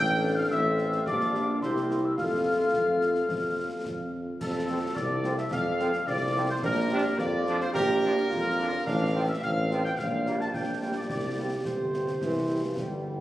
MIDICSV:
0, 0, Header, 1, 9, 480
1, 0, Start_track
1, 0, Key_signature, -1, "major"
1, 0, Tempo, 557621
1, 908, Time_signature, 2, 2, 24, 8
1, 11367, End_track
2, 0, Start_track
2, 0, Title_t, "Piccolo"
2, 0, Program_c, 0, 72
2, 0, Note_on_c, 0, 91, 94
2, 308, Note_on_c, 0, 89, 94
2, 321, Note_off_c, 0, 91, 0
2, 428, Note_off_c, 0, 89, 0
2, 435, Note_on_c, 0, 88, 78
2, 878, Note_off_c, 0, 88, 0
2, 919, Note_on_c, 0, 86, 99
2, 1361, Note_off_c, 0, 86, 0
2, 1393, Note_on_c, 0, 84, 73
2, 1764, Note_on_c, 0, 88, 69
2, 1777, Note_off_c, 0, 84, 0
2, 1874, Note_off_c, 0, 88, 0
2, 1879, Note_on_c, 0, 89, 88
2, 3520, Note_off_c, 0, 89, 0
2, 11367, End_track
3, 0, Start_track
3, 0, Title_t, "Trumpet section"
3, 0, Program_c, 1, 61
3, 0, Note_on_c, 1, 79, 121
3, 284, Note_off_c, 1, 79, 0
3, 317, Note_on_c, 1, 77, 105
3, 433, Note_off_c, 1, 77, 0
3, 434, Note_on_c, 1, 76, 110
3, 878, Note_off_c, 1, 76, 0
3, 908, Note_on_c, 1, 74, 93
3, 1355, Note_off_c, 1, 74, 0
3, 1400, Note_on_c, 1, 72, 81
3, 1730, Note_off_c, 1, 72, 0
3, 1762, Note_on_c, 1, 76, 70
3, 1864, Note_on_c, 1, 77, 80
3, 1875, Note_off_c, 1, 76, 0
3, 3513, Note_off_c, 1, 77, 0
3, 3793, Note_on_c, 1, 69, 95
3, 4238, Note_off_c, 1, 69, 0
3, 4266, Note_on_c, 1, 74, 109
3, 4628, Note_off_c, 1, 74, 0
3, 4638, Note_on_c, 1, 76, 88
3, 4754, Note_off_c, 1, 76, 0
3, 4754, Note_on_c, 1, 77, 106
3, 5198, Note_off_c, 1, 77, 0
3, 5224, Note_on_c, 1, 74, 112
3, 5587, Note_off_c, 1, 74, 0
3, 5596, Note_on_c, 1, 72, 93
3, 5707, Note_on_c, 1, 70, 114
3, 5712, Note_off_c, 1, 72, 0
3, 6154, Note_off_c, 1, 70, 0
3, 6178, Note_on_c, 1, 74, 127
3, 6543, Note_off_c, 1, 74, 0
3, 6555, Note_on_c, 1, 72, 103
3, 6607, Note_off_c, 1, 72, 0
3, 6658, Note_on_c, 1, 70, 127
3, 7589, Note_off_c, 1, 70, 0
3, 7622, Note_on_c, 1, 77, 123
3, 7985, Note_off_c, 1, 77, 0
3, 7999, Note_on_c, 1, 76, 102
3, 8106, Note_off_c, 1, 76, 0
3, 8117, Note_on_c, 1, 77, 116
3, 8448, Note_off_c, 1, 77, 0
3, 8473, Note_on_c, 1, 79, 98
3, 8582, Note_off_c, 1, 79, 0
3, 8593, Note_on_c, 1, 77, 109
3, 8855, Note_off_c, 1, 77, 0
3, 8962, Note_on_c, 1, 81, 96
3, 9013, Note_off_c, 1, 81, 0
3, 9064, Note_on_c, 1, 79, 81
3, 9401, Note_off_c, 1, 79, 0
3, 9433, Note_on_c, 1, 74, 73
3, 9539, Note_off_c, 1, 74, 0
3, 9550, Note_on_c, 1, 74, 80
3, 9995, Note_off_c, 1, 74, 0
3, 10028, Note_on_c, 1, 72, 63
3, 11227, Note_off_c, 1, 72, 0
3, 11367, End_track
4, 0, Start_track
4, 0, Title_t, "Woodwind section"
4, 0, Program_c, 2, 71
4, 0, Note_on_c, 2, 69, 75
4, 0, Note_on_c, 2, 77, 75
4, 875, Note_off_c, 2, 69, 0
4, 905, Note_on_c, 2, 67, 65
4, 1387, Note_off_c, 2, 67, 0
4, 1388, Note_on_c, 2, 70, 66
4, 1390, Note_on_c, 2, 76, 70
4, 1392, Note_off_c, 2, 77, 0
4, 1836, Note_off_c, 2, 76, 0
4, 1863, Note_on_c, 2, 69, 65
4, 1866, Note_on_c, 2, 77, 58
4, 1868, Note_off_c, 2, 70, 0
4, 3512, Note_off_c, 2, 69, 0
4, 3548, Note_off_c, 2, 77, 0
4, 3789, Note_on_c, 2, 69, 75
4, 4235, Note_off_c, 2, 69, 0
4, 4265, Note_on_c, 2, 74, 89
4, 4627, Note_off_c, 2, 74, 0
4, 4630, Note_on_c, 2, 76, 75
4, 4741, Note_off_c, 2, 76, 0
4, 4752, Note_on_c, 2, 77, 83
4, 5197, Note_off_c, 2, 77, 0
4, 5238, Note_on_c, 2, 74, 95
4, 5569, Note_off_c, 2, 74, 0
4, 5594, Note_on_c, 2, 72, 92
4, 5647, Note_off_c, 2, 72, 0
4, 5711, Note_on_c, 2, 70, 90
4, 6156, Note_off_c, 2, 70, 0
4, 6195, Note_on_c, 2, 74, 98
4, 6527, Note_off_c, 2, 74, 0
4, 6542, Note_on_c, 2, 72, 110
4, 6598, Note_off_c, 2, 72, 0
4, 6666, Note_on_c, 2, 70, 114
4, 7593, Note_off_c, 2, 70, 0
4, 7631, Note_on_c, 2, 77, 116
4, 7964, Note_off_c, 2, 77, 0
4, 7981, Note_on_c, 2, 76, 101
4, 8104, Note_on_c, 2, 77, 101
4, 8105, Note_off_c, 2, 76, 0
4, 8440, Note_off_c, 2, 77, 0
4, 8465, Note_on_c, 2, 79, 107
4, 8520, Note_off_c, 2, 79, 0
4, 8582, Note_on_c, 2, 77, 101
4, 8920, Note_off_c, 2, 77, 0
4, 8943, Note_on_c, 2, 81, 91
4, 9065, Note_off_c, 2, 81, 0
4, 9066, Note_on_c, 2, 79, 73
4, 9425, Note_on_c, 2, 74, 66
4, 9427, Note_off_c, 2, 79, 0
4, 9480, Note_off_c, 2, 74, 0
4, 9545, Note_on_c, 2, 74, 70
4, 9993, Note_off_c, 2, 74, 0
4, 10031, Note_on_c, 2, 72, 56
4, 11229, Note_off_c, 2, 72, 0
4, 11367, End_track
5, 0, Start_track
5, 0, Title_t, "French horn section"
5, 0, Program_c, 3, 60
5, 0, Note_on_c, 3, 60, 81
5, 0, Note_on_c, 3, 65, 77
5, 0, Note_on_c, 3, 69, 79
5, 875, Note_off_c, 3, 60, 0
5, 876, Note_off_c, 3, 65, 0
5, 876, Note_off_c, 3, 69, 0
5, 908, Note_on_c, 3, 58, 75
5, 909, Note_on_c, 3, 65, 75
5, 912, Note_on_c, 3, 67, 79
5, 1355, Note_off_c, 3, 65, 0
5, 1357, Note_off_c, 3, 67, 0
5, 1379, Note_off_c, 3, 58, 0
5, 1390, Note_on_c, 3, 58, 74
5, 1390, Note_on_c, 3, 64, 75
5, 1393, Note_on_c, 3, 67, 71
5, 1835, Note_off_c, 3, 58, 0
5, 1837, Note_off_c, 3, 67, 0
5, 1869, Note_off_c, 3, 64, 0
5, 1873, Note_on_c, 3, 57, 68
5, 1876, Note_on_c, 3, 69, 76
5, 1878, Note_on_c, 3, 65, 68
5, 3517, Note_off_c, 3, 57, 0
5, 3519, Note_off_c, 3, 69, 0
5, 3554, Note_off_c, 3, 65, 0
5, 4024, Note_on_c, 3, 65, 70
5, 4024, Note_on_c, 3, 69, 61
5, 4028, Note_on_c, 3, 60, 60
5, 4111, Note_off_c, 3, 69, 0
5, 4112, Note_off_c, 3, 65, 0
5, 4115, Note_off_c, 3, 60, 0
5, 4501, Note_on_c, 3, 69, 55
5, 4503, Note_on_c, 3, 65, 56
5, 4506, Note_on_c, 3, 60, 58
5, 4589, Note_off_c, 3, 69, 0
5, 4591, Note_off_c, 3, 65, 0
5, 4593, Note_off_c, 3, 60, 0
5, 4980, Note_on_c, 3, 60, 81
5, 4980, Note_on_c, 3, 69, 74
5, 4985, Note_on_c, 3, 65, 69
5, 5068, Note_off_c, 3, 60, 0
5, 5069, Note_off_c, 3, 69, 0
5, 5072, Note_off_c, 3, 65, 0
5, 5462, Note_on_c, 3, 69, 76
5, 5464, Note_on_c, 3, 65, 67
5, 5466, Note_on_c, 3, 60, 68
5, 5550, Note_off_c, 3, 69, 0
5, 5552, Note_off_c, 3, 65, 0
5, 5553, Note_off_c, 3, 60, 0
5, 5942, Note_on_c, 3, 62, 88
5, 5945, Note_on_c, 3, 65, 85
5, 5947, Note_off_c, 3, 65, 0
5, 5947, Note_on_c, 3, 65, 85
5, 6030, Note_off_c, 3, 62, 0
5, 6034, Note_off_c, 3, 65, 0
5, 6429, Note_on_c, 3, 65, 75
5, 6431, Note_on_c, 3, 62, 77
5, 6435, Note_off_c, 3, 65, 0
5, 6435, Note_on_c, 3, 65, 79
5, 6517, Note_off_c, 3, 62, 0
5, 6520, Note_off_c, 3, 65, 0
5, 6913, Note_on_c, 3, 62, 86
5, 6913, Note_on_c, 3, 65, 87
5, 6920, Note_off_c, 3, 65, 0
5, 6920, Note_on_c, 3, 65, 98
5, 6998, Note_off_c, 3, 62, 0
5, 7003, Note_off_c, 3, 65, 0
5, 7391, Note_on_c, 3, 65, 75
5, 7392, Note_off_c, 3, 65, 0
5, 7392, Note_on_c, 3, 65, 80
5, 7393, Note_on_c, 3, 62, 82
5, 7477, Note_off_c, 3, 65, 0
5, 7478, Note_off_c, 3, 62, 0
5, 7872, Note_on_c, 3, 60, 89
5, 7872, Note_on_c, 3, 65, 78
5, 7875, Note_off_c, 3, 65, 0
5, 7875, Note_on_c, 3, 65, 80
5, 7958, Note_off_c, 3, 60, 0
5, 7959, Note_off_c, 3, 65, 0
5, 8353, Note_on_c, 3, 60, 69
5, 8355, Note_on_c, 3, 65, 79
5, 8356, Note_off_c, 3, 65, 0
5, 8356, Note_on_c, 3, 65, 75
5, 8438, Note_off_c, 3, 60, 0
5, 8441, Note_off_c, 3, 65, 0
5, 8833, Note_on_c, 3, 67, 71
5, 8835, Note_on_c, 3, 65, 74
5, 8837, Note_on_c, 3, 62, 70
5, 8918, Note_off_c, 3, 67, 0
5, 8920, Note_off_c, 3, 65, 0
5, 8921, Note_off_c, 3, 62, 0
5, 9314, Note_on_c, 3, 62, 55
5, 9315, Note_on_c, 3, 65, 60
5, 9317, Note_on_c, 3, 67, 56
5, 9399, Note_off_c, 3, 62, 0
5, 9400, Note_off_c, 3, 65, 0
5, 9401, Note_off_c, 3, 67, 0
5, 9793, Note_on_c, 3, 67, 57
5, 9795, Note_on_c, 3, 65, 52
5, 9797, Note_on_c, 3, 60, 54
5, 9878, Note_off_c, 3, 67, 0
5, 9880, Note_off_c, 3, 65, 0
5, 9881, Note_off_c, 3, 60, 0
5, 10261, Note_on_c, 3, 65, 43
5, 10263, Note_on_c, 3, 60, 50
5, 10263, Note_on_c, 3, 67, 46
5, 10349, Note_off_c, 3, 65, 0
5, 10350, Note_off_c, 3, 60, 0
5, 10351, Note_off_c, 3, 67, 0
5, 10741, Note_on_c, 3, 64, 52
5, 10745, Note_on_c, 3, 60, 53
5, 10745, Note_on_c, 3, 67, 46
5, 10829, Note_off_c, 3, 64, 0
5, 10832, Note_off_c, 3, 60, 0
5, 10832, Note_off_c, 3, 67, 0
5, 11223, Note_on_c, 3, 60, 45
5, 11225, Note_on_c, 3, 64, 46
5, 11227, Note_on_c, 3, 67, 44
5, 11310, Note_off_c, 3, 60, 0
5, 11312, Note_off_c, 3, 64, 0
5, 11314, Note_off_c, 3, 67, 0
5, 11367, End_track
6, 0, Start_track
6, 0, Title_t, "Euphonium"
6, 0, Program_c, 4, 58
6, 4261, Note_on_c, 4, 62, 91
6, 5228, Note_on_c, 4, 60, 70
6, 5241, Note_off_c, 4, 62, 0
6, 5708, Note_off_c, 4, 60, 0
6, 5712, Note_on_c, 4, 62, 90
6, 5819, Note_off_c, 4, 62, 0
6, 5951, Note_on_c, 4, 67, 107
6, 6059, Note_off_c, 4, 67, 0
6, 6188, Note_on_c, 4, 65, 89
6, 6635, Note_off_c, 4, 65, 0
6, 6658, Note_on_c, 4, 67, 120
6, 7134, Note_on_c, 4, 65, 102
6, 7147, Note_off_c, 4, 67, 0
6, 7621, Note_off_c, 4, 65, 0
6, 7629, Note_on_c, 4, 62, 113
6, 8109, Note_on_c, 4, 60, 78
6, 8122, Note_off_c, 4, 62, 0
6, 8596, Note_on_c, 4, 65, 96
6, 8609, Note_off_c, 4, 60, 0
6, 9069, Note_off_c, 4, 65, 0
6, 9075, Note_on_c, 4, 62, 76
6, 9518, Note_off_c, 4, 62, 0
6, 9556, Note_on_c, 4, 67, 71
6, 11197, Note_off_c, 4, 67, 0
6, 11367, End_track
7, 0, Start_track
7, 0, Title_t, "Trombone section"
7, 0, Program_c, 5, 61
7, 0, Note_on_c, 5, 62, 94
7, 436, Note_off_c, 5, 62, 0
7, 452, Note_on_c, 5, 60, 81
7, 887, Note_off_c, 5, 60, 0
7, 924, Note_on_c, 5, 62, 102
7, 1396, Note_off_c, 5, 62, 0
7, 1396, Note_on_c, 5, 64, 73
7, 1839, Note_off_c, 5, 64, 0
7, 1879, Note_on_c, 5, 65, 82
7, 3520, Note_off_c, 5, 65, 0
7, 4032, Note_on_c, 5, 60, 74
7, 4033, Note_on_c, 5, 53, 74
7, 4115, Note_off_c, 5, 53, 0
7, 4115, Note_off_c, 5, 60, 0
7, 4507, Note_on_c, 5, 53, 81
7, 4510, Note_on_c, 5, 60, 76
7, 4591, Note_off_c, 5, 53, 0
7, 4593, Note_off_c, 5, 60, 0
7, 4986, Note_on_c, 5, 53, 84
7, 4987, Note_on_c, 5, 60, 78
7, 5070, Note_off_c, 5, 53, 0
7, 5071, Note_off_c, 5, 60, 0
7, 5461, Note_on_c, 5, 53, 90
7, 5466, Note_on_c, 5, 60, 84
7, 5548, Note_off_c, 5, 53, 0
7, 5551, Note_off_c, 5, 60, 0
7, 5952, Note_on_c, 5, 53, 93
7, 5957, Note_on_c, 5, 62, 100
7, 6035, Note_off_c, 5, 53, 0
7, 6038, Note_off_c, 5, 62, 0
7, 6428, Note_on_c, 5, 53, 108
7, 6432, Note_on_c, 5, 62, 99
7, 6512, Note_off_c, 5, 53, 0
7, 6514, Note_off_c, 5, 62, 0
7, 6907, Note_on_c, 5, 62, 103
7, 6910, Note_on_c, 5, 53, 101
7, 6991, Note_off_c, 5, 62, 0
7, 6993, Note_off_c, 5, 53, 0
7, 7399, Note_on_c, 5, 53, 95
7, 7400, Note_on_c, 5, 62, 98
7, 7479, Note_off_c, 5, 53, 0
7, 7480, Note_off_c, 5, 62, 0
7, 7880, Note_on_c, 5, 60, 101
7, 7883, Note_on_c, 5, 53, 94
7, 7960, Note_off_c, 5, 60, 0
7, 7962, Note_off_c, 5, 53, 0
7, 8361, Note_on_c, 5, 53, 93
7, 8363, Note_on_c, 5, 60, 93
7, 8440, Note_off_c, 5, 53, 0
7, 8442, Note_off_c, 5, 60, 0
7, 8845, Note_on_c, 5, 58, 85
7, 8847, Note_on_c, 5, 55, 82
7, 8923, Note_off_c, 5, 58, 0
7, 8924, Note_off_c, 5, 55, 0
7, 9330, Note_on_c, 5, 58, 65
7, 9331, Note_on_c, 5, 55, 67
7, 9406, Note_off_c, 5, 55, 0
7, 9406, Note_off_c, 5, 58, 0
7, 9796, Note_on_c, 5, 55, 62
7, 9798, Note_on_c, 5, 53, 56
7, 9877, Note_off_c, 5, 55, 0
7, 9878, Note_off_c, 5, 53, 0
7, 10043, Note_on_c, 5, 48, 62
7, 10482, Note_off_c, 5, 48, 0
7, 10520, Note_on_c, 5, 52, 77
7, 10849, Note_off_c, 5, 52, 0
7, 10885, Note_on_c, 5, 53, 58
7, 10988, Note_off_c, 5, 53, 0
7, 10999, Note_on_c, 5, 55, 64
7, 11367, Note_off_c, 5, 55, 0
7, 11367, End_track
8, 0, Start_track
8, 0, Title_t, "Tuba"
8, 0, Program_c, 6, 58
8, 0, Note_on_c, 6, 33, 86
8, 372, Note_off_c, 6, 33, 0
8, 435, Note_on_c, 6, 33, 84
8, 855, Note_off_c, 6, 33, 0
8, 913, Note_on_c, 6, 34, 85
8, 1334, Note_off_c, 6, 34, 0
8, 1393, Note_on_c, 6, 36, 70
8, 1814, Note_off_c, 6, 36, 0
8, 1876, Note_on_c, 6, 41, 71
8, 2296, Note_off_c, 6, 41, 0
8, 2353, Note_on_c, 6, 41, 66
8, 2774, Note_off_c, 6, 41, 0
8, 2829, Note_on_c, 6, 41, 65
8, 3182, Note_off_c, 6, 41, 0
8, 3309, Note_on_c, 6, 41, 61
8, 3732, Note_off_c, 6, 41, 0
8, 3795, Note_on_c, 6, 41, 82
8, 4192, Note_off_c, 6, 41, 0
8, 4271, Note_on_c, 6, 36, 77
8, 4670, Note_off_c, 6, 36, 0
8, 4749, Note_on_c, 6, 41, 84
8, 5149, Note_off_c, 6, 41, 0
8, 5232, Note_on_c, 6, 36, 81
8, 5630, Note_off_c, 6, 36, 0
8, 5708, Note_on_c, 6, 34, 106
8, 6108, Note_off_c, 6, 34, 0
8, 6192, Note_on_c, 6, 41, 95
8, 6590, Note_off_c, 6, 41, 0
8, 6672, Note_on_c, 6, 34, 115
8, 7070, Note_off_c, 6, 34, 0
8, 7149, Note_on_c, 6, 41, 89
8, 7548, Note_off_c, 6, 41, 0
8, 7634, Note_on_c, 6, 33, 105
8, 8031, Note_off_c, 6, 33, 0
8, 8117, Note_on_c, 6, 33, 94
8, 8512, Note_off_c, 6, 33, 0
8, 8594, Note_on_c, 6, 34, 94
8, 8991, Note_off_c, 6, 34, 0
8, 9069, Note_on_c, 6, 34, 69
8, 9433, Note_off_c, 6, 34, 0
8, 9553, Note_on_c, 6, 36, 71
8, 9950, Note_off_c, 6, 36, 0
8, 10032, Note_on_c, 6, 31, 57
8, 10429, Note_off_c, 6, 31, 0
8, 10511, Note_on_c, 6, 36, 67
8, 10909, Note_off_c, 6, 36, 0
8, 10988, Note_on_c, 6, 31, 66
8, 11367, Note_off_c, 6, 31, 0
8, 11367, End_track
9, 0, Start_track
9, 0, Title_t, "Drums"
9, 436, Note_on_c, 9, 35, 64
9, 436, Note_on_c, 9, 38, 60
9, 522, Note_off_c, 9, 35, 0
9, 522, Note_off_c, 9, 38, 0
9, 672, Note_on_c, 9, 38, 53
9, 758, Note_off_c, 9, 38, 0
9, 795, Note_on_c, 9, 38, 54
9, 881, Note_off_c, 9, 38, 0
9, 914, Note_on_c, 9, 35, 85
9, 914, Note_on_c, 9, 38, 76
9, 1000, Note_off_c, 9, 35, 0
9, 1000, Note_off_c, 9, 38, 0
9, 1036, Note_on_c, 9, 38, 58
9, 1122, Note_off_c, 9, 38, 0
9, 1157, Note_on_c, 9, 38, 52
9, 1243, Note_off_c, 9, 38, 0
9, 1398, Note_on_c, 9, 35, 64
9, 1398, Note_on_c, 9, 38, 71
9, 1484, Note_off_c, 9, 35, 0
9, 1484, Note_off_c, 9, 38, 0
9, 1519, Note_on_c, 9, 38, 50
9, 1605, Note_off_c, 9, 38, 0
9, 1641, Note_on_c, 9, 38, 54
9, 1727, Note_off_c, 9, 38, 0
9, 1876, Note_on_c, 9, 35, 81
9, 1876, Note_on_c, 9, 38, 60
9, 1962, Note_off_c, 9, 35, 0
9, 1962, Note_off_c, 9, 38, 0
9, 2353, Note_on_c, 9, 35, 63
9, 2353, Note_on_c, 9, 38, 63
9, 2439, Note_off_c, 9, 35, 0
9, 2439, Note_off_c, 9, 38, 0
9, 2592, Note_on_c, 9, 38, 56
9, 2678, Note_off_c, 9, 38, 0
9, 2709, Note_on_c, 9, 38, 52
9, 2796, Note_off_c, 9, 38, 0
9, 2831, Note_on_c, 9, 35, 73
9, 2831, Note_on_c, 9, 38, 55
9, 2917, Note_off_c, 9, 35, 0
9, 2917, Note_off_c, 9, 38, 0
9, 3312, Note_on_c, 9, 35, 61
9, 3312, Note_on_c, 9, 38, 61
9, 3398, Note_off_c, 9, 35, 0
9, 3398, Note_off_c, 9, 38, 0
9, 3796, Note_on_c, 9, 35, 80
9, 3796, Note_on_c, 9, 38, 66
9, 3796, Note_on_c, 9, 49, 58
9, 3882, Note_off_c, 9, 35, 0
9, 3882, Note_off_c, 9, 38, 0
9, 3882, Note_off_c, 9, 49, 0
9, 4271, Note_on_c, 9, 35, 69
9, 4271, Note_on_c, 9, 38, 69
9, 4357, Note_off_c, 9, 35, 0
9, 4357, Note_off_c, 9, 38, 0
9, 4510, Note_on_c, 9, 38, 62
9, 4596, Note_off_c, 9, 38, 0
9, 4628, Note_on_c, 9, 38, 57
9, 4714, Note_off_c, 9, 38, 0
9, 4744, Note_on_c, 9, 35, 78
9, 4744, Note_on_c, 9, 38, 77
9, 4830, Note_off_c, 9, 35, 0
9, 4830, Note_off_c, 9, 38, 0
9, 4987, Note_on_c, 9, 38, 52
9, 5074, Note_off_c, 9, 38, 0
9, 5104, Note_on_c, 9, 38, 55
9, 5190, Note_off_c, 9, 38, 0
9, 5226, Note_on_c, 9, 35, 74
9, 5226, Note_on_c, 9, 38, 63
9, 5312, Note_off_c, 9, 35, 0
9, 5312, Note_off_c, 9, 38, 0
9, 5702, Note_on_c, 9, 35, 92
9, 5702, Note_on_c, 9, 38, 70
9, 5788, Note_off_c, 9, 35, 0
9, 5788, Note_off_c, 9, 38, 0
9, 6185, Note_on_c, 9, 35, 76
9, 6185, Note_on_c, 9, 38, 69
9, 6271, Note_off_c, 9, 35, 0
9, 6271, Note_off_c, 9, 38, 0
9, 6425, Note_on_c, 9, 38, 61
9, 6511, Note_off_c, 9, 38, 0
9, 6548, Note_on_c, 9, 38, 57
9, 6634, Note_off_c, 9, 38, 0
9, 6667, Note_on_c, 9, 35, 96
9, 6667, Note_on_c, 9, 38, 81
9, 6753, Note_off_c, 9, 35, 0
9, 6753, Note_off_c, 9, 38, 0
9, 6912, Note_on_c, 9, 38, 65
9, 6998, Note_off_c, 9, 38, 0
9, 7034, Note_on_c, 9, 38, 54
9, 7120, Note_off_c, 9, 38, 0
9, 7149, Note_on_c, 9, 35, 75
9, 7149, Note_on_c, 9, 38, 65
9, 7236, Note_off_c, 9, 35, 0
9, 7236, Note_off_c, 9, 38, 0
9, 7634, Note_on_c, 9, 35, 87
9, 7634, Note_on_c, 9, 38, 74
9, 7634, Note_on_c, 9, 49, 34
9, 7720, Note_off_c, 9, 35, 0
9, 7720, Note_off_c, 9, 38, 0
9, 7720, Note_off_c, 9, 49, 0
9, 8111, Note_on_c, 9, 35, 78
9, 8111, Note_on_c, 9, 38, 69
9, 8198, Note_off_c, 9, 35, 0
9, 8198, Note_off_c, 9, 38, 0
9, 8358, Note_on_c, 9, 38, 63
9, 8444, Note_off_c, 9, 38, 0
9, 8477, Note_on_c, 9, 38, 55
9, 8563, Note_off_c, 9, 38, 0
9, 8597, Note_on_c, 9, 35, 94
9, 8597, Note_on_c, 9, 38, 81
9, 8683, Note_off_c, 9, 35, 0
9, 8683, Note_off_c, 9, 38, 0
9, 8835, Note_on_c, 9, 38, 60
9, 8921, Note_off_c, 9, 38, 0
9, 8959, Note_on_c, 9, 38, 50
9, 9045, Note_off_c, 9, 38, 0
9, 9072, Note_on_c, 9, 35, 74
9, 9072, Note_on_c, 9, 38, 65
9, 9158, Note_off_c, 9, 35, 0
9, 9158, Note_off_c, 9, 38, 0
9, 9552, Note_on_c, 9, 35, 83
9, 9552, Note_on_c, 9, 38, 69
9, 9638, Note_off_c, 9, 35, 0
9, 9638, Note_off_c, 9, 38, 0
9, 10030, Note_on_c, 9, 35, 72
9, 10030, Note_on_c, 9, 38, 65
9, 10116, Note_off_c, 9, 35, 0
9, 10116, Note_off_c, 9, 38, 0
9, 10274, Note_on_c, 9, 38, 50
9, 10360, Note_off_c, 9, 38, 0
9, 10393, Note_on_c, 9, 38, 53
9, 10479, Note_off_c, 9, 38, 0
9, 10514, Note_on_c, 9, 35, 75
9, 10514, Note_on_c, 9, 38, 60
9, 10600, Note_off_c, 9, 35, 0
9, 10600, Note_off_c, 9, 38, 0
9, 10990, Note_on_c, 9, 35, 68
9, 10990, Note_on_c, 9, 38, 66
9, 11076, Note_off_c, 9, 35, 0
9, 11076, Note_off_c, 9, 38, 0
9, 11367, End_track
0, 0, End_of_file